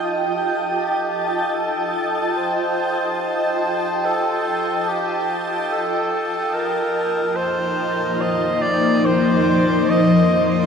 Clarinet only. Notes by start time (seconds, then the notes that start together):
Already playing: F4
0.71 G4
1.54 A4
2.37 C5
3.21 C5
4.06 A4
4.88 G4
5.72 A4
6.54 A#4
7.36 C5
8.21 D#5
8.62 D5
9.05 C5
9.90 D#5